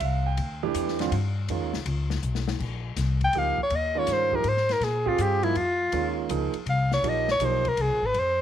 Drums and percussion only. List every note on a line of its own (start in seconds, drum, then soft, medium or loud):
0.00 ride medium
0.37 ride medium
0.75 hi-hat pedal medium
0.75 ride medium
0.88 snare soft
0.99 snare soft
0.99 ride medium
1.12 ride medium
1.49 ride medium
1.74 snare medium
1.86 ride medium
2.10 snare medium
2.23 hi-hat pedal medium
2.35 snare medium
2.48 snare medium
2.60 kick medium
2.60 crash medium
2.97 snare soft
2.97 hi-hat pedal medium
2.97 ride medium
3.21 kick medium
3.21 ride soft
3.33 ride medium
3.58 kick medium
3.70 ride medium
4.07 snare soft
4.07 hi-hat pedal medium
4.07 ride medium
4.32 kick soft
4.44 ride medium
4.57 snare soft
4.69 snare soft
4.69 ride soft
4.81 snare soft
4.81 ride medium
5.06 kick medium
5.18 hi-hat pedal medium
5.18 ride medium
5.43 ride soft
5.55 ride medium
5.92 ride medium
6.30 hi-hat pedal medium
6.30 ride medium
6.54 ride soft
6.66 ride medium
6.92 snare medium
7.04 ride medium
7.28 snare medium
7.40 hi-hat pedal medium
7.40 ride medium
7.65 kick medium
7.65 ride medium
7.77 ride medium
8.14 ride medium